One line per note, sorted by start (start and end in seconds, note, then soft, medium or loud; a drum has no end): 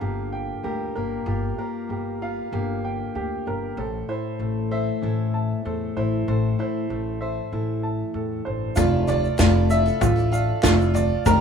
0.00 0.50 G1 medium
0.00 1.23 G2 medium
0.00 1.23 D3 medium
0.00 0.62 G3 medium
0.00 0.96 A#3 medium
0.00 1.24 F4 soft
0.00 0.63 G4 medium
0.00 0.33 A#4 medium
0.00 0.95 F5 medium
0.32 1.58 G5 medium
0.64 0.89 D2 medium
0.64 1.23 G3 medium
0.64 1.26 G4 medium
0.64 1.23 A#4 soft
0.95 1.20 G1 medium
0.95 1.57 A#3 medium
0.95 1.57 A#4 medium
1.26 1.51 G1 medium
1.26 3.13 G2 medium
1.26 2.21 F4 medium
1.26 1.89 G4 medium
1.58 2.51 A#3 medium
1.58 2.84 A#4 medium
1.89 2.38 G1 medium
1.89 3.74 G3 medium
1.89 2.52 G4 medium
2.22 3.74 F4 medium
2.22 3.47 F5 medium
2.52 3.01 G1 medium
2.52 3.74 D3 medium
2.52 3.78 A#3 medium
2.52 3.14 G4 medium
2.85 3.78 G5 medium
3.14 3.39 D2 medium
3.14 3.46 F2 medium
3.14 3.78 G4 medium
3.46 3.71 G1 medium
3.46 3.78 G2 medium
3.46 3.78 A#4 medium
3.77 4.02 A1 loud
3.77 6.24 A2 medium
3.77 4.39 A4 medium
3.77 4.71 C5 medium
4.09 5.02 E4 soft
4.09 5.34 C5 medium
4.39 4.88 A1 medium
4.39 5.65 A3 medium
4.39 5.02 A4 medium
4.71 5.65 C5 medium
4.71 5.97 E5 medium
5.02 5.51 A1 medium
5.02 7.52 E3 medium
5.02 5.97 E4 medium
5.02 5.64 A4 medium
5.34 6.59 A5 medium
5.65 5.90 E2 medium
5.65 6.90 A3 medium
5.65 6.27 A4 medium
5.65 6.24 C5 medium
5.97 6.21 A1 medium
5.97 6.59 E4 medium
5.97 6.58 C5 medium
6.27 6.52 A1 loud
6.27 8.14 A2 medium
6.27 6.89 A4 medium
6.27 7.21 C5 medium
6.59 7.52 E4 soft
6.59 7.84 C5 medium
6.90 7.38 A1 medium
6.90 8.73 A3 medium
6.90 7.51 A4 medium
7.21 8.74 C5 medium
7.21 8.46 E5 medium
7.52 8.01 A1 medium
7.52 8.73 E3 medium
7.52 8.74 E4 medium
7.52 8.13 A4 medium
7.83 8.77 A5 medium
8.14 8.38 E2 medium
8.14 8.46 A2 medium
8.14 8.77 A4 medium
8.45 8.70 A1 medium
8.45 8.77 G2 medium
8.45 8.77 C5 medium
8.76 9.25 F1 loud
8.76 9.08 F3 medium
8.76 9.06 A3 medium
8.76 9.07 D4 medium
8.76 9.08 E4 medium
8.76 9.38 F4 medium
8.76 9.09 A4 loud
8.76 kick loud
8.76 floor tom loud
8.76 shaker loud
9.07 9.38 A3 medium
9.07 9.39 D4 medium
9.07 9.39 E4 medium
9.07 9.40 A4 medium
9.07 10.32 D5 medium
9.07 floor tom medium
9.07 shaker medium
9.24 shaker soft
9.38 9.88 F1 loud
9.38 9.71 F3 medium
9.38 9.69 A3 medium
9.38 9.70 D4 loud
9.38 9.70 E4 loud
9.38 10.00 F4 medium
9.38 9.71 A4 loud
9.38 kick loud
9.38 snare loud
9.38 clap medium
9.38 shaker loud
9.70 9.86 A3 medium
9.70 9.86 D4 medium
9.70 9.85 E4 medium
9.70 9.85 A4 medium
9.70 10.95 E5 medium
9.70 shaker medium
9.86 10.17 D4 soft
9.86 10.16 E4 medium
9.86 10.15 A4 medium
9.86 shaker soft
10.01 10.49 A1 loud
10.01 10.61 F4 medium
10.01 kick loud
10.01 floor tom loud
10.01 shaker loud
10.16 10.31 D4 medium
10.16 10.33 E4 medium
10.16 10.32 A4 medium
10.16 shaker soft
10.32 10.62 A3 medium
10.32 10.62 D4 medium
10.32 10.63 A4 medium
10.32 11.26 F5 medium
10.32 shaker medium
10.62 11.12 F1 loud
10.62 10.79 F3 medium
10.62 10.79 A3 medium
10.62 10.79 D4 loud
10.62 10.78 E4 loud
10.62 11.26 F4 medium
10.62 10.76 A4 loud
10.62 kick loud
10.62 snare loud
10.62 clap loud
10.62 shaker loud
10.78 10.93 D4 medium
10.78 10.95 E4 medium
10.78 10.94 A4 medium
10.78 shaker soft
10.94 11.25 A3 medium
10.94 11.25 D4 medium
10.94 11.26 A4 medium
10.94 11.26 D5 medium
10.94 floor tom medium
10.94 shaker medium
11.26 11.41 F1 loud
11.26 11.41 F3 loud
11.26 11.41 G3 loud
11.26 11.41 D4 medium
11.26 11.41 G4 loud
11.26 11.41 A#4 medium
11.26 11.41 A#4 loud
11.26 kick loud
11.26 floor tom loud
11.26 shaker loud